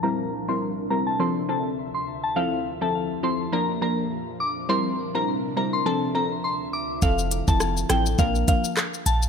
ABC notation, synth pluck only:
X:1
M:4/4
L:1/16
Q:"Swing 16ths" 1/4=103
K:F
V:1 name="Synth pluck"
[G,CEB] z2 [G,CEB]3 [G,CEB]2 [F,CDA]2 [F,CDA] z4 z | [F,CEA] z2 [F,CEA]3 [F,CEA]2 [F,B,DB]2 [F,B,DB] z4 z | [G,CEB] z2 [G,CEB]3 [G,CEB]2 [F,CDA]2 [F,CDA] z4 z | [F,CEA] z2 [F,CEA]3 [F,CEA]2 [F,B,DB]2 [F,B,DB] z4 z |]